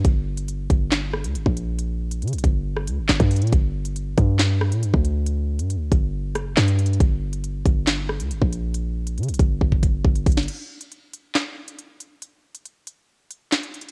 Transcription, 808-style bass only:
X:1
M:4/4
L:1/16
Q:1/4=138
K:Gm
V:1 name="808-style bass" clef=bass
G,,,6 G,,,4- G,,, D,, G,,, B,,,3- | B,,,4 D, B,,, G,,,4 D,, G,,, G,,, G,,2 B,, | G,,,6 G,,4- G,, B,, G,, D,,3- | D,,3 G,,3/2 D,,3/2 G,,,4 ^F,,,2 G,,4 |
G,,,6 G,,,4- G,,, D,, G,,, B,,,3- | B,,,4 D, B,,, G,,,2 G,,,4 G,,,2 G,,,2 | z16 | z16 |]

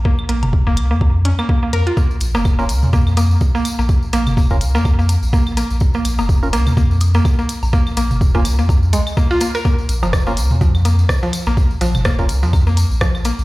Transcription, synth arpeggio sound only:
X:1
M:4/4
L:1/16
Q:"Swing 16ths" 1/4=125
K:Bbm
V:1 name="Synth arpeggio sound"
B, z B, z2 B, z B, z2 D B, B, B, B F | B, z2 B, z B, z2 B, z B, z2 B, z B, | z2 B, z B, z2 B, z B, z2 B, z B, z | z B, z B, z2 B, z B, z2 B, z B, z2 |
B, z B, z2 B, z B, z2 A, z B, F B, B | B, z2 F, z B, z2 F, z B, z2 F, z B, | z2 F, z B, z2 F, z B, z2 F, z B, z |]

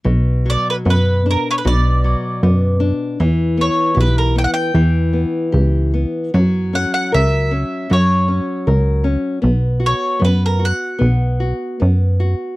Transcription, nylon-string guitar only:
X:1
M:2/4
L:1/8
Q:1/4=77
K:Bm
V:1 name="Nylon-string guitar"
B,, F, B, D | B,, F, B, D | E, B, G B, | E, B, G B, |
F, C ^A C | F, C ^A C | B, F B, F | B, F B, F |]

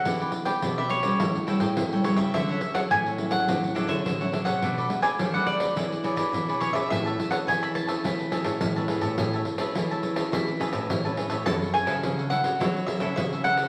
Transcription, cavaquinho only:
X:1
M:4/4
L:1/16
Q:1/4=105
K:A
V:1 name="Cavaquinho"
[E=GBd] [GBd] z [GBd] [EGBd] [GBd]2 [GBd] [EAc=g] z [EAcg] [Acg]2 [Acg] [EAcg] [Acg] | [DAcf] [Acf] z [Acf] [DAcf] [Acf]2 [Acf] [DAcf] z [DAcf] [Acf]2 [Acf] [DAcf] [Acf] | [DABd] [ABd] z [ABd] [DABd] [ABd]2 [ABd] [EGBd] z [EGBd] [GBd]2 [GBd] [EGBd] [GBd] | [Gca] [cea] z [cea] [Gcea] [cea]2 [cea] [Gcea] z [Gcea] [cea]2 [cea] [Gcea] [cea] |
[Gcea] [cea] z [cea] [Gcea] [cea]2 [cea] [Gcea] z [Gcea] [cea]2 [cea] [Gcea] [cea] | [K:F#m] [EAcf]2 [EAcf] [EAcf] z [Acf] [EAcf] [Acf] [EAcf]3 [EAcf] z [Acf] [EAcf] [Acf] |]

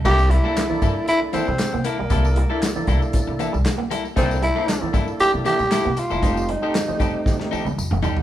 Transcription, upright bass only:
X:1
M:4/4
L:1/16
Q:1/4=116
K:Cmix
V:1 name="Upright bass" clef=bass
C,,3 z3 G,, z4 C, z C, z =B,,, | C,,3 z3 C,, z2 C, z C,, z4 | C,,3 z3 G,, z2 C, z B,, z C, z E,,, | F,,,3 z3 F,,, z F,, z _E,, E,, F,, F,,, z =B,,, |]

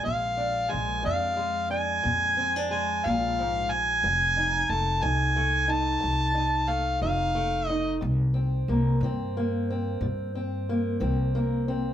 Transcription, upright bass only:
X:1
M:12/8
L:1/8
Q:3/8=60
K:Bb
V:1 name="Upright bass" clef=bass
B,,,2 B,,, F,,3 F,,3 B,,,3 | F,,,2 F,,, C,,3 C,,3 F,,,3 | C,,2 C,, G,,3 G,,3 C,,3 |]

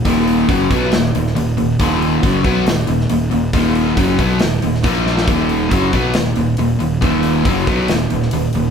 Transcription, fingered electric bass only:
X:1
M:4/4
L:1/8
Q:1/4=138
K:Ebm
V:1 name="Fingered electric bass" clef=bass
E,,,2 G,,, C,, E,,, E,,, E,,, E,,, | E,,,2 G,,, C,, E,,, E,,, E,,, E,,, | E,,,2 G,,, C,, E,,, E,,, B,,,2 | E,,,2 G,,, C,, E,,, E,,, E,,, E,,, |
E,,,2 G,,, C,, E,,, E,,, E,,, E,,, |]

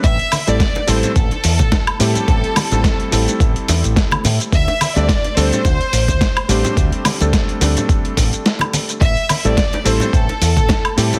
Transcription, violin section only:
X:1
M:4/4
L:1/16
Q:"Swing 16ths" 1/4=107
K:Am
V:1 name="Violin section"
e3 d3 c2 A6 A2- | A8- A2 z6 | e3 d3 c8 c2- | c2 z12 z2 |
e2- e/2 e/2 d3 c2 A6 A2 |]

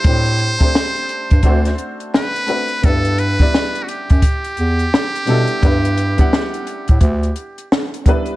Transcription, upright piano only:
X:1
M:4/4
L:1/16
Q:"Swing 16ths" 1/4=86
K:G
V:1 name="Upright piano"
[A,CDGc]3 [A,CDGc]4- [A,CDGc] [A,CDFc]4- [A,CDFc] z [A,CDFB]2 | [G,B,DEB]3 [G,B,DEd]6- [G,B,DEd] z4 [G,B,DEA]2 | [G,B,DEB]3 [G,B,DEf]6- [G,B,DEf] z4 [G,B,DEB]2 |]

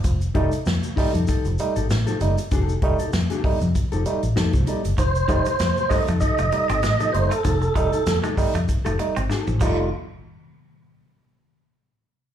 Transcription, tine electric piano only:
X:1
M:4/4
L:1/16
Q:"Swing 16ths" 1/4=97
K:Fmix
V:1 name="Tine electric piano"
F, z [G,A,E] [A,E] z2 [G,A,E] z [A,E] F, [G,A,E] z [A,E] F, [G,A,E] z | F, z [G,A,E] [A,E] z2 [G,A,E] z [A,E] F, [G,A,E] z [A,E] F, [G,A,E] z | F, z [G,A,E] [A,E] z2 [G,A,E] z [A,E] F, [G,A,E] z [A,E] F, [G,A,E] z | F, z [G,A,E] [A,E] z2 [G,A,E] z [A,E] F, [G,A,E] z [A,E] F, [G,A,E]2 |
z16 |]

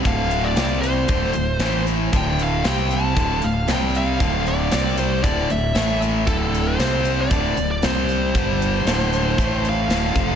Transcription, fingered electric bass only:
X:1
M:4/4
L:1/8
Q:1/4=116
K:Dm
V:1 name="Fingered electric bass" clef=bass
D,,,2 C,,2 D,,, D,,, A,,,2 | D,,,2 C,,2 D,,, D,,, C,,2 | D,,,2 C,,2 D,,, D,,, A,,,2 | D,,,2 C,,2 D,,, D,,, C,,2 |
G,,,2 D,,,2 A,,,2 D,,, F,,, |]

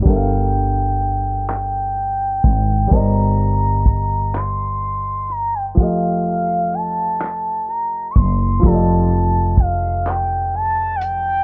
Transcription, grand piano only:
X:1
M:6/8
L:1/8
Q:3/8=42
K:Gm
V:1 name="Grand piano"
[G,DAB=ef]6 | [G,GBcde]6 | [F,A,FGe]6 | [F,FGAde]6 |]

